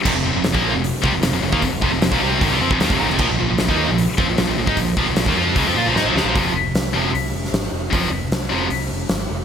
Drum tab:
CC |x---------------|----------------|x---------------|----------------|
HH |----o---o---o---|o---o---o---o---|----o---o---o---|o---o---o-------|
SD |----o-------o--o|----o-------o--o|----o-------o--o|----o-------o-o-|
BD |o----o----o----o|o-o--o--o--o-o--|o----o----o----o|o-o--o--o-------|

CC |----------------|----------------|
HH |o---o---o---o---|o---o---o---o---|
SD |----o------oo---|----o-------o---|
BD |o---------------|o---------------|